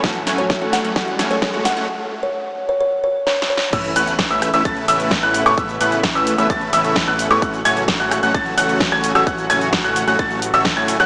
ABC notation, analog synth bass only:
X:1
M:4/4
L:1/16
Q:1/4=130
K:A
V:1 name="Analog synth bass" clef=bass
z16 | z16 | A,,,2 A,,,3 A,,,2 A,,, A,,,2 A,,,3 A,,,2 A,,, | A,,,2 A,,,3 A,,,2 A,,, A,,,2 A,,,3 A,,,2 A,, |
A,,,2 A,,,3 A,,,2 A,,, A,,,2 A,,,3 A,,,2 A,,, | A,,,2 A,,,3 A,,,2 A,,, A,,,3 A,,,2 A,,2 A,,, |]